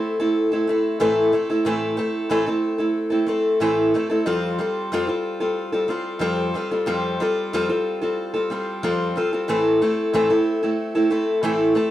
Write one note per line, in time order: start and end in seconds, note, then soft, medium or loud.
0.00 0.19 A3 medium
0.00 0.19 C4 medium
0.00 0.19 E4 medium
0.00 0.18 A4 medium
0.20 0.53 A3 soft
0.20 0.52 C4 medium
0.20 0.52 E4 medium
0.20 0.50 A4 medium
0.52 0.66 A3 soft
0.52 0.68 C4 soft
0.52 0.68 E4 medium
0.52 0.68 A4 medium
0.67 0.99 A3 medium
0.67 1.00 C4 medium
0.67 1.00 E4 medium
0.67 1.00 A4 medium
1.00 1.33 A2 medium
1.00 1.33 E3 medium
1.00 1.31 A3 medium
1.00 1.31 C4 medium
1.00 1.32 E4 loud
1.00 1.33 A4 loud
1.32 1.49 A3 medium
1.32 1.49 C4 medium
1.32 1.49 E4 medium
1.32 1.48 A4 medium
1.49 1.65 A3 medium
1.49 1.65 C4 medium
1.49 1.65 E4 medium
1.49 1.65 A4 medium
1.65 1.98 A2 medium
1.65 1.99 E3 medium
1.65 1.96 A3 medium
1.65 1.96 C4 medium
1.65 1.96 E4 medium
1.65 1.97 A4 medium
1.97 2.29 A3 medium
1.97 2.30 C4 medium
1.97 2.30 E4 medium
1.97 2.30 A4 medium
2.30 2.47 A2 medium
2.30 2.47 E3 medium
2.30 2.47 A3 medium
2.30 2.47 C4 medium
2.30 2.46 E4 loud
2.30 2.45 A4 loud
2.46 2.79 A3 soft
2.46 2.79 C4 medium
2.46 2.78 E4 medium
2.46 2.77 A4 medium
2.78 3.11 A3 soft
2.78 3.11 C4 soft
2.78 3.10 E4 medium
2.78 3.09 A4 medium
3.10 3.25 A3 soft
3.10 3.27 C4 medium
3.10 3.27 E4 medium
3.10 3.28 A4 medium
3.27 3.60 A3 medium
3.27 3.60 C4 medium
3.27 3.60 E4 medium
3.27 3.61 A4 medium
3.60 3.94 A2 medium
3.60 3.94 E3 medium
3.60 3.93 A3 medium
3.60 3.94 C4 medium
3.60 3.94 E4 medium
3.60 3.95 A4 medium
3.94 4.10 A3 medium
3.94 4.10 C4 medium
3.94 4.09 E4 medium
3.94 4.08 A4 medium
4.10 4.25 A3 soft
4.10 4.26 C4 medium
4.10 4.26 E4 soft
4.10 4.26 A4 medium
4.26 4.59 F2 medium
4.26 4.59 F3 medium
4.26 4.57 G3 medium
4.26 4.58 C4 medium
4.26 4.59 F4 medium
4.26 4.60 A4 medium
4.58 4.92 G3 medium
4.58 4.92 C4 medium
4.58 4.93 F4 medium
4.58 4.93 A4 medium
4.92 5.09 F2 medium
4.92 5.09 F3 medium
4.92 5.08 G3 medium
4.92 5.08 C4 medium
4.92 5.07 F4 loud
4.92 5.06 A4 loud
5.07 5.42 G3 medium
5.07 5.40 C4 medium
5.07 5.40 F4 medium
5.07 5.39 A4 medium
5.40 5.73 G3 medium
5.40 5.72 C4 medium
5.40 5.72 F4 medium
5.40 5.71 A4 medium
5.72 5.87 G3 soft
5.72 5.87 C4 medium
5.72 5.89 F4 medium
5.72 5.89 A4 medium
5.88 6.19 G3 medium
5.88 6.20 C4 medium
5.88 6.20 F4 medium
5.88 6.20 A4 medium
6.19 6.54 F2 medium
6.19 6.54 F3 medium
6.19 6.53 G3 medium
6.19 6.54 C4 medium
6.19 6.55 F4 loud
6.19 6.55 A4 loud
6.54 6.71 G3 medium
6.54 6.71 C4 medium
6.54 6.70 F4 medium
6.54 6.70 A4 medium
6.71 6.86 G3 medium
6.71 6.86 C4 medium
6.71 6.86 F4 medium
6.71 6.87 A4 medium
6.86 7.20 F2 medium
6.86 7.20 F3 medium
6.86 7.19 G3 medium
6.86 7.19 C4 loud
6.86 7.20 F4 medium
6.86 7.21 A4 medium
7.20 7.53 G3 medium
7.20 7.54 C4 medium
7.20 7.53 F4 medium
7.20 7.54 A4 medium
7.53 7.70 F2 medium
7.53 7.70 F3 loud
7.53 7.70 G3 medium
7.53 7.69 C4 medium
7.53 7.68 F4 loud
7.53 7.68 A4 loud
7.69 8.03 G3 medium
7.69 8.02 C4 medium
7.69 8.01 F4 medium
7.69 8.00 A4 medium
8.01 8.35 G3 soft
8.01 8.35 C4 medium
8.01 8.33 F4 medium
8.01 8.32 A4 medium
8.34 8.49 G3 soft
8.34 8.50 C4 medium
8.34 8.51 F4 medium
8.34 8.51 A4 medium
8.50 8.82 G3 medium
8.50 8.83 C4 medium
8.50 8.83 F4 medium
8.50 8.83 A4 medium
8.83 9.16 F2 medium
8.83 9.16 F3 medium
8.83 9.14 G3 medium
8.83 9.16 C4 medium
8.83 9.16 F4 medium
8.83 9.16 A4 loud
9.16 9.33 G3 medium
9.16 9.33 C4 medium
9.16 9.32 F4 medium
9.16 9.31 A4 medium
9.32 9.49 G3 soft
9.32 9.48 C4 medium
9.32 9.49 F4 medium
9.32 9.49 A4 medium
9.48 9.81 A2 medium
9.48 9.81 E3 medium
9.48 9.80 A3 medium
9.48 9.81 C4 medium
9.48 9.82 E4 medium
9.48 9.82 A4 medium
9.82 10.13 A3 medium
9.82 10.13 C4 medium
9.82 10.13 E4 medium
9.82 10.14 A4 medium
10.13 10.30 A2 medium
10.13 10.30 E3 medium
10.13 10.30 A3 medium
10.13 10.30 C4 loud
10.13 10.29 E4 loud
10.13 10.29 A4 loud
10.30 10.63 A3 medium
10.30 10.62 C4 medium
10.30 10.62 E4 medium
10.30 10.61 A4 medium
10.63 10.96 A3 medium
10.63 10.95 C4 medium
10.63 10.94 E4 medium
10.63 10.94 A4 medium
10.95 11.09 A3 soft
10.95 11.09 C4 medium
10.95 11.10 E4 medium
10.95 11.11 A4 medium
11.10 11.42 A3 medium
11.10 11.42 C4 medium
11.10 11.43 E4 medium
11.10 11.43 A4 medium
11.43 11.76 A2 medium
11.43 11.76 E3 loud
11.43 11.73 A3 medium
11.43 11.74 C4 loud
11.43 11.74 E4 medium
11.43 11.75 A4 loud
11.75 11.91 A3 medium
11.75 11.91 C4 medium
11.75 11.91 E4 medium
11.75 11.90 A4 medium